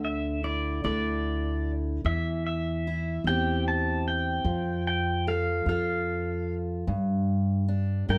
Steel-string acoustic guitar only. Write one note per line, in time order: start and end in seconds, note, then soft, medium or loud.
0.00 2.01 D3 medium
0.00 0.44 D4 medium
0.44 0.84 E4 medium
0.84 2.00 D4 soft
0.84 2.00 E4 medium
0.84 2.00 A4 medium
2.06 4.42 E3 medium
2.87 3.26 E4 medium
3.27 4.42 C4 medium
3.27 4.42 E4 medium
3.27 4.47 G4 medium
4.46 6.87 F3 medium
5.27 5.67 A4 medium
5.68 6.83 F4 soft
5.68 6.84 A4 medium
6.87 8.18 G2 medium
7.68 8.08 D4 medium
8.09 8.18 A#3 medium
8.09 8.18 D4 medium
8.09 8.18 A#4 medium